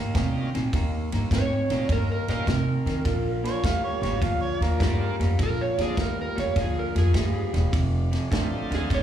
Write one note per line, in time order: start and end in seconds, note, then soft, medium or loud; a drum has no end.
0.00 0.13 D#3 medium
0.00 0.13 A#3 medium
0.14 0.42 C3 medium
0.14 0.51 D#3 medium
0.14 0.50 G3 medium
0.14 0.50 A#3 medium
0.14 0.51 C4 medium
0.14 0.50 C#4 medium
0.14 0.50 D#4 medium
0.14 0.50 F4 medium
0.14 kick medium
0.14 snare loud
0.14 ride medium
0.54 0.67 A#2 medium
0.54 0.71 D#3 medium
0.54 0.72 C4 medium
0.54 snare soft
0.54 ride medium
0.73 1.00 D#2 loud
0.73 1.09 D#3 medium
0.73 1.09 A#3 medium
0.73 kick medium
0.73 snare soft
0.73 ride medium
1.12 1.26 G2 medium
1.12 1.29 D#3 medium
1.12 1.30 A#3 medium
1.12 snare soft
1.12 ride medium
1.31 1.58 G#2 medium
1.31 1.67 D#3 medium
1.31 1.67 C4 medium
1.31 kick medium
1.31 snare medium
1.31 ride medium
1.35 1.90 C#5 medium
1.70 1.83 A#2 medium
1.70 1.88 D#3 medium
1.70 1.88 G3 medium
1.70 1.88 A#3 medium
1.70 1.88 C4 medium
1.70 1.88 C#4 medium
1.70 1.88 D#4 medium
1.70 1.88 F4 medium
1.70 snare soft
1.70 ride medium
1.89 2.17 G2 medium
1.89 2.25 D#3 medium
1.89 2.25 A#3 medium
1.89 2.10 A#4 medium
1.89 kick medium
1.89 snare soft
1.89 ride medium
2.12 2.29 A#4 medium
2.28 2.42 A#2 medium
2.28 2.46 D#3 medium
2.28 2.46 G3 medium
2.28 2.46 A#3 medium
2.28 2.46 C#4 medium
2.28 2.47 D#4 medium
2.28 2.47 F4 medium
2.28 2.48 A#4 medium
2.28 snare soft
2.28 ride medium
2.47 2.74 C3 medium
2.47 2.83 D#3 medium
2.47 2.83 C4 medium
2.47 4.20 A#4 medium
2.47 kick medium
2.47 snare loud
2.47 ride medium
2.86 3.00 D#3 medium
2.86 3.04 D#3 medium
2.86 3.04 C4 medium
2.86 snare soft
2.86 ride medium
3.04 3.46 A#1 medium
3.04 3.41 A#2 medium
3.04 3.41 F3 medium
3.04 kick medium
3.04 snare soft
3.04 ride medium
3.44 3.62 A#2 medium
3.44 3.62 F3 medium
3.44 3.66 C#5 medium
3.44 snare soft
3.44 ride medium
3.63 3.91 D2 medium
3.63 4.00 A#2 medium
3.63 4.00 G3 medium
3.63 3.84 F5 medium
3.63 kick medium
3.63 snare medium
3.63 ride medium
3.84 4.02 C#5 medium
4.02 4.16 G#1 medium
4.02 4.21 A#2 medium
4.02 4.21 G3 medium
4.02 4.21 C#5 medium
4.02 snare soft
4.02 ride medium
4.22 4.49 D2 medium
4.22 4.58 A#2 medium
4.22 4.58 F3 medium
4.22 4.41 F5 medium
4.22 kick medium
4.22 snare soft
4.22 ride medium
4.41 4.64 C#5 medium
4.60 4.74 D#2 medium
4.60 4.79 A#2 medium
4.60 4.80 F3 medium
4.60 5.19 A#4 medium
4.60 snare soft
4.60 ride medium
4.80 5.08 G2 medium
4.80 5.16 A#2 medium
4.80 5.17 G3 medium
4.80 5.16 G#3 medium
4.80 5.16 A#3 medium
4.80 5.16 C4 soft
4.80 5.16 D4 medium
4.80 5.16 F4 medium
4.80 kick medium
4.80 snare loud
4.80 ride medium
5.19 5.33 F2 medium
5.19 5.37 A#2 medium
5.19 5.38 G3 medium
5.19 snare soft
5.19 ride medium
5.39 5.66 A#1 medium
5.39 5.75 A#2 medium
5.39 5.75 F3 medium
5.39 kick medium
5.39 snare soft
5.39 ride medium
5.43 5.60 A#4 medium
5.61 5.79 C#5 medium
5.78 5.92 D2 medium
5.78 5.96 A#2 medium
5.78 5.96 F3 medium
5.78 5.96 G#3 medium
5.78 5.96 A#3 medium
5.78 5.96 C4 medium
5.78 5.96 D4 medium
5.78 5.96 F4 medium
5.78 5.99 G#4 medium
5.78 snare soft
5.78 ride medium
5.97 6.25 D#2 medium
5.97 6.33 A#2 medium
5.97 6.33 G3 medium
5.97 kick medium
5.97 snare medium
5.97 ride medium
6.01 6.18 A#4 medium
6.21 6.38 A#4 medium
6.35 6.51 F2 medium
6.35 6.54 A#2 medium
6.35 6.54 G3 medium
6.35 6.57 C#5 medium
6.35 snare soft
6.35 ride medium
6.56 6.83 D2 medium
6.56 6.92 A#2 medium
6.56 6.92 F3 medium
6.56 kick medium
6.56 snare soft
6.56 ride medium
6.61 6.77 G#4 medium
6.79 6.96 A#4 medium
6.95 7.09 F2 medium
6.95 7.13 A#2 medium
6.95 7.13 F3 medium
6.95 7.72 G#4 medium
6.95 snare soft
6.95 ride medium
7.14 7.41 G2 medium
7.14 7.50 A#2 medium
7.14 7.50 G3 medium
7.14 kick medium
7.14 snare loud
7.14 ride medium
7.54 7.67 E1 medium
7.54 7.71 A#2 medium
7.54 7.71 G3 medium
7.54 snare soft
7.54 ride medium
7.72 8.13 F1 medium
7.72 8.08 F2 medium
7.72 8.09 C3 medium
7.72 kick medium
7.72 snare soft
7.72 ride medium
8.11 8.29 F2 medium
8.11 8.30 C3 medium
8.11 snare soft
8.11 ride medium
8.31 8.59 A1 medium
8.31 8.67 F2 medium
8.31 8.67 D3 medium
8.31 9.03 G3 medium
8.31 9.03 A3 medium
8.31 9.03 C4 medium
8.31 9.03 D#4 medium
8.31 9.03 F4 medium
8.31 kick medium
8.31 snare medium
8.31 ride medium
8.71 8.84 D#2 medium
8.71 8.88 F2 medium
8.71 8.88 D3 medium
8.71 8.91 G#4 medium
8.71 snare soft
8.71 ride medium
8.90 9.03 A1 medium
8.90 9.03 F2 medium
8.90 9.03 C3 medium
8.90 kick medium
8.90 snare soft
8.90 ride medium
8.94 9.03 C#5 medium